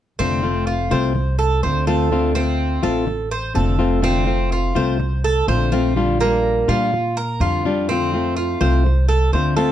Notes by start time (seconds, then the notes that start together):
0.19 F1 D3 A3 C4 F4
0.43 A3 C4 F4
0.67 F4
0.91 C2 A3 C4 F4 C5
1.15 muted nylon-string guitar stroke
1.39 A4
1.63 D2 D3 A3 C4 F4 C5
1.87 A3 C4 F4 A4
2.11 D3 A3 C4 F4
2.35 A3 C4 F4
2.83 A1 A3 C4 F4 A4
3.07 muted nylon-string guitar stroke
3.31 C5
3.54 F1 D3 A3 C4 F4 A4
3.79 A3 C4 F4
4.02 D3 A3 C4 F4
4.27 A3 C4 F4
4.52 F4
4.75 C2 A3 C4 F4 C5
5.00 muted nylon-string guitar stroke
5.24 A4
5.47 A#1 D3 A3 C4 F4 C5
5.72 A3 C4 F4
5.96 D3 G3 D4 F4
6.20 G3 A#3 D4 F4
6.68 A#2 G3 D4 F4
6.93 muted nylon-string guitar stroke
7.17 A#4
7.40 F2 D3 G3 D4 F4
7.65 G3 D4 F4
7.89 D3 A3 C4 F4
8.14 A3 C4 F4
8.37 F4
8.61 C2 A3 C4 F4 C5
8.85 muted nylon-string guitar stroke
9.08 A4
9.32 D2 D3 A3 C4 F4 C5
9.56 A3 C4 F4 A4